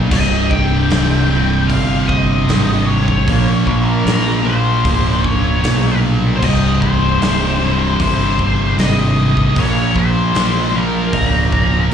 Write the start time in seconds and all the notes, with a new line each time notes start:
Already playing: A#2 A#3
0.11 C1 C2 G2 C3 D#5, kick, crash
0.50 G5, kick
0.90 C1, snare, open hi-hat
1.29 C2 G2 C3
1.68 G1 F5, kick, open hi-hat
2.08 D#5, kick
2.48 G#1 C2 G2 C3, snare, open hi-hat
2.86 C#5
3.08 kick
3.27 A#1 A#2 F3 A#3, kick, open hi-hat
3.67 A#1, kick
3.84 A#4
4.06 A#1, snare, open hi-hat
4.44 A#2 F3 A#3 C5
4.84 C#1, kick, open hi-hat
5.24 C#5, kick
5.63 B1 A#2 F3 A#3, snare, open hi-hat
6.36 C5
6.41 C1 C2 G2 C3 D#5, kick, crash
6.81 C5, kick
7.21 C1, snare, open hi-hat
7.58 C2 G2 C3
8.00 G1 C5, kick, open hi-hat
8.39 kick
8.76 G#1 C2 G2 C3 D#5, snare, open hi-hat
9.37 kick
9.55 A#1 A#2 F3 A#3, kick, open hi-hat
9.59 C#5
9.96 A#1 C5, kick
10.35 A#1, snare, open hi-hat
10.72 A#2 F3 A#3 A#4
11.13 C#1, kick, open hi-hat
11.52 kick
11.90 A#2